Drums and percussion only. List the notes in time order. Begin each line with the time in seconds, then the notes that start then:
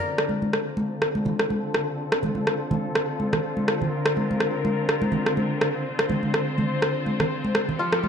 0.18 cross-stick
0.29 high conga
0.42 high conga
0.53 cross-stick
0.77 high conga
1.02 cross-stick
1.15 high conga
1.25 high conga, low conga
1.39 cross-stick
1.50 high conga
1.74 cross-stick
2.12 cross-stick
2.23 high conga, low conga
2.35 high conga
2.47 cross-stick
2.71 high conga, low conga
2.95 cross-stick
3.20 high conga
3.33 cross-stick, low conga
3.57 high conga
3.68 cross-stick
3.82 low conga
4.06 cross-stick
4.17 high conga
4.31 high conga
4.40 cross-stick
4.65 high conga
4.89 cross-stick
5.02 high conga
5.12 high conga, low conga
5.26 cross-stick
5.37 high conga
5.61 cross-stick
5.99 cross-stick
6.09 high conga, low conga
6.23 high conga
6.34 cross-stick
6.58 high conga, low conga
6.82 cross-stick
7.06 high conga
7.20 cross-stick, low conga
7.45 high conga
7.55 cross-stick
7.69 low conga
7.92 cross-stick
8.04 high conga